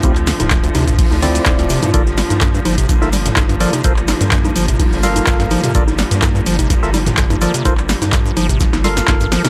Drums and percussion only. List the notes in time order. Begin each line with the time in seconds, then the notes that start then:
0.03 kick, closed hi-hat, high conga, shaker
0.15 clap, closed hi-hat, shaker
0.27 snare, open hi-hat, shaker
0.40 snare, closed hi-hat, mid tom, high conga, shaker
0.50 kick, snare, clap, closed hi-hat, shaker
0.64 closed hi-hat, shaker
0.75 open hi-hat, high conga, shaker
0.87 kick, closed hi-hat, mid tom, shaker
0.99 kick, closed hi-hat, open hi-hat, shaker
1.11 snare, high conga, shaker
1.22 open hi-hat, shaker
1.35 closed hi-hat, shaker
1.46 kick, snare, clap, closed hi-hat, high conga, shaker
1.59 snare, closed hi-hat, shaker
1.70 open hi-hat, shaker
1.82 closed hi-hat, mid tom, high conga, shaker
1.94 kick, closed hi-hat, high conga, shaker
2.06 snare, shaker
2.17 snare, open hi-hat, shaker
2.30 snare, closed hi-hat, high conga, shaker
2.41 kick, snare, clap, closed hi-hat, shaker
2.55 shaker
2.65 open hi-hat, high conga, shaker
2.78 kick, snare, closed hi-hat, shaker
2.89 kick, snare, closed hi-hat, shaker
3.01 snare, high conga, shaker
3.12 open hi-hat, shaker
3.26 snare, closed hi-hat, mid tom, shaker
3.36 kick, snare, clap, closed hi-hat, high conga, shaker
3.49 closed hi-hat, shaker
3.60 open hi-hat, shaker
3.73 snare, closed hi-hat, high conga, shaker
3.84 kick, closed hi-hat, shaker
3.96 clap, shaker
4.08 snare, open hi-hat, high conga, shaker
4.21 snare, closed hi-hat, shaker
4.31 kick, snare, clap, closed hi-hat, shaker
4.45 high conga, shaker
4.56 open hi-hat, shaker
4.68 kick, closed hi-hat, mid tom, shaker
4.79 kick, closed hi-hat, open hi-hat, high conga, shaker
4.93 snare, shaker
5.03 open hi-hat, shaker
5.16 closed hi-hat, high conga, shaker
5.27 kick, snare, clap, closed hi-hat, shaker
5.40 snare, closed hi-hat, shaker
5.50 open hi-hat, high conga, shaker
5.64 closed hi-hat, mid tom, shaker
5.75 kick, closed hi-hat, shaker
5.87 snare, high conga, shaker
5.98 snare, open hi-hat, shaker
6.11 snare, closed hi-hat, shaker
6.22 kick, snare, clap, closed hi-hat, high conga, shaker
6.36 shaker
6.46 open hi-hat, shaker
6.59 kick, snare, closed hi-hat, high conga, shaker
6.70 kick, snare, closed hi-hat, shaker
6.82 snare, shaker
6.94 open hi-hat, high conga, shaker
7.06 snare, closed hi-hat, mid tom, shaker
7.17 kick, snare, clap, closed hi-hat, shaker
7.30 closed hi-hat, high conga, shaker
7.41 open hi-hat, shaker
7.54 snare, closed hi-hat, shaker
7.65 kick, closed hi-hat, high conga, shaker
7.77 clap, shaker
7.89 snare, open hi-hat, shaker
8.02 snare, closed hi-hat, high conga, shaker
8.12 kick, snare, clap, closed hi-hat, shaker
8.26 shaker
8.37 open hi-hat, high conga, shaker
8.49 kick, closed hi-hat, mid tom, shaker
8.60 kick, snare, closed hi-hat, shaker
8.73 snare, high conga, shaker
8.84 snare, open hi-hat, shaker
8.97 snare, closed hi-hat, shaker
9.08 kick, snare, clap, closed hi-hat, high conga, shaker
9.20 snare, closed hi-hat, shaker
9.32 snare, open hi-hat, shaker
9.45 snare, closed hi-hat, mid tom, high conga, shaker